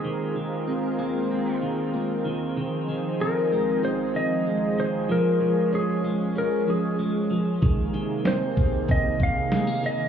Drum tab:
HH |--------|--------|--------|xxxxxxxx|
SD |--------|--------|--------|--o---o-|
BD |--------|--------|--------|o--ooo--|